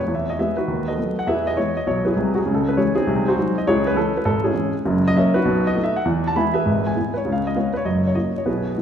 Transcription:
0.00 C#5
0.07 E2 E3
0.15 E5
0.30 D#5
0.39 E3 G#3 B3 G#4 B4 E5
0.57 D#4 F#4 B4
0.68 D#2 D#3
0.88 A4 B4 D#5
0.98 F#3 A3 B3
1.19 F#5
1.27 E2 E3 G#4 B4 E5
1.47 D#5
1.56 E3 G#3 B3 C#5
1.77 D#5
1.86 B1 B2 C#5
2.05 E4 G#4 B4
2.16 C2 C3
2.35 F#4 G#4
2.46 C#2 C#3
2.54 A4
2.69 B4
2.77 E3 G#3 C#4 E4 G#4 C#5
2.95 C4 D#4 G#4
3.07 C2 C3
3.28 F#4 G#4 C5
3.38 F#3 G#3 D#4
3.58 D#5
3.67 C#2 C#3 E4 G#4 C#5
3.87 B4
3.95 E3 G#3 C#4 A4
4.17 B4
4.25 G#1 G#2 A4
4.44 C#4 E4 G#4
4.55 E3 G#3 C#4
4.86 F#1 F#2
5.08 D#5
5.16 F#3 A#3 C#4 A#4 C#5 E5
5.34 D#4 F#4 B4
5.45 B1 B2
5.67 D#5
5.75 A3 B3 D#4
5.84 E5
5.96 F#5
6.05 E2 E3
6.28 A5
6.36 G#3 B3 E4 E5 G#5 B5
6.54 G#4 B4 E5
6.65 G#1 G#2
6.87 G#5
6.96 G#3 B3 E4
7.14 B4 C#5
7.25 C#2 C#3
7.32 F5
7.47 D#5
7.56 G#3 B3 C#4 B4 C#5 F5
7.74 B4 C#5
7.84 F#1 F#2 D#5
8.07 C#5
8.15 F#3 A#3 E4 D#5
8.38 C#5
8.45 B1 B2 E4 G#4 B4
8.76 G#3 B3 E4

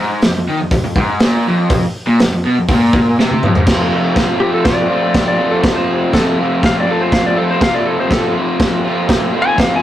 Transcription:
0.00 G#2
0.22 F2, snare, open hi-hat
0.37 F2
0.49 D#3
0.60 F2
0.71 F2, kick, open hi-hat
0.85 F2
0.96 G#2, kick
1.20 A#2, snare, open hi-hat
1.47 F2
1.70 kick, open hi-hat
2.07 A#2
2.19 F2, snare, open hi-hat
2.33 F2
2.45 B2
2.58 F2
2.68 A#2, kick, open hi-hat
2.93 kick
3.19 C3, snare
3.31 high tom
3.43 F2, mid tom
3.55 G#2, floor tom
3.67 F2 C3 F3 A3, kick, snare, crash
3.71 C4 F4
4.16 F2 C3 F3 A3 C4 F4, kick, snare, crash
4.40 F3 A3 C4 F4 G4
4.54 A4
4.64 C5, kick, snare, crash
4.75 D5
4.88 A3 C4 F4
4.93 F3
5.14 kick, snare, crash
5.28 D5
5.38 A3 C4 F4
5.42 F3
5.51 A4
5.62 F2 C3 F3 A3 C4, kick, snare, crash
5.66 F4
5.76 C5
6.10 F2 C3 F3 A3 C4 F4 A4, kick, crash
6.15 snare
6.37 A3 C4 F4
6.42 F3
6.63 F5, kick, snare, crash
6.80 D5
6.87 F3 A3 C4 F4 A4
7.02 C5
7.12 F5, kick, snare, crash
7.26 D5
7.36 F3 A3 C4 F4 A4
7.51 C5
7.60 F2 C3 F3 A3 F5, kick, snare, crash
7.64 C4 F4
7.75 D5
7.86 A4
8.00 C5
8.09 F2 C3 F3 A3 C4, kick, snare, crash
8.13 F4 A4
8.35 F3 A3 C4 F4
8.60 kick, snare, crash
8.85 A3 C4 F4
8.89 F3
9.09 kick, snare, crash
9.33 F3 A3 C4 F4
9.42 G#5
9.56 F2 C3 F3 A3 C4 F4 F5, kick, snare, crash
9.76 G#5

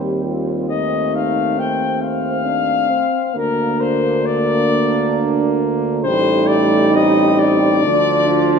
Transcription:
Already playing: D#2 G3 C4 G4 C5
0.25 F4
0.69 A3 D#4 D#5
1.15 F5
1.58 C4 G5
2.02 F5
2.45 D4
2.90 C4
3.34 D2 A#3 D4 A#4
3.80 C5
4.26 D5
6.04 A1 G3 A3 D#4 C5
6.48 D5
6.95 C4 D#5
7.39 D5
7.84 D2 F3 D4
8.28 F4

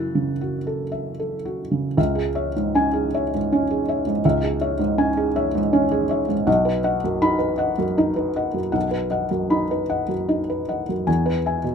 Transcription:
Already playing: F#2 E4 E6 F#6 A6
0.15 C#3
0.41 F#4
0.67 A4
0.92 E5
1.20 A4
1.45 F#4
1.71 C#3
1.97 C#2 E5
2.15 G#4
2.35 C#5 E5
2.56 G#2
2.75 C#4 G#5
2.93 G#4
3.14 C#5 E5
3.34 G#2
3.52 C#4 C#5
3.71 G#4
3.88 C#5 E5
4.07 G#2
4.25 C#2 E5
4.43 G#4
4.61 C#5 E5
4.79 G#2
4.98 C#4 G#5
5.17 G#4
5.36 C#5 E5
5.55 G#2
5.73 C#4 C#5
5.91 G#4
6.09 C#5 E5
6.28 G#2
6.47 B1 F#5
6.65 B4
6.84 D#5 F#5
7.04 F#2
7.22 D#4 B5
7.39 B4
7.58 D#5 F#5
7.78 F#2
7.98 D#4 D#5
8.16 B4
8.36 D#5 F#5
8.54 F#2
8.72 B1 F#5
8.91 B4
9.10 D#5 F#5
9.31 F#2
9.50 D#4 B5
9.71 B4
9.90 D#5 F#5
10.08 F#2
10.29 D#4 D#5
10.50 B4
10.69 D#5 F#5
10.89 F#2
11.07 E2 G#5
11.26 B4
11.46 E5 G#5
11.64 B2

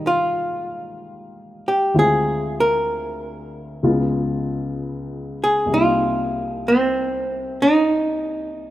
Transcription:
Already playing: G#2 D#3 G3 A#3 C4 D#4 F4
0.07 F4
1.68 G4
1.94 D2 D3 G#3 C4 F4
1.99 G#4
2.60 A#4
3.83 C#2 C#3 G#3 B3 F4
5.44 G#4
5.66 C2 C3
5.72 G3 A#3 F4
5.77 D#4
6.68 C4
7.62 D#4

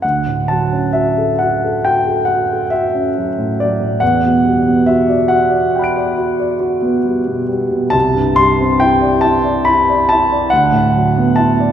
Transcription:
0.02 D2 F#5
0.27 A2
0.48 F#3 A5
0.73 C#4
0.93 F#4 E5
1.18 A4
1.39 F#4 F#5
1.65 A4
1.85 F#4 G5
2.07 A4
2.25 F#4 F#5
2.52 A4
2.70 F#4 E5
2.94 C#4
3.18 F#3
3.38 A2
3.60 F#3 D5
3.81 A2
4.00 E2 F#5
4.25 B2
4.45 G3
4.68 B3
4.86 F#4 E5
5.09 D5
5.28 F#4 F#5
5.50 D5
5.75 F#4 G5 B5
5.82 F#6 D7
5.97 D5
6.17 F#4
6.40 D5
6.60 F#4
6.82 B3
7.05 G3
7.28 B2
7.49 G3
7.70 B2
7.90 C2 A5
8.14 G2
8.36 G3 C6
8.61 C4
8.80 E4 G5
9.02 D5
9.21 E4 A5
9.45 D5
9.65 E4 B5
9.90 D5
10.09 E4 A5
10.32 D5
10.50 D2 F#5
10.72 A2
10.96 F#3
11.18 B3
11.36 E4 A5
11.60 D5

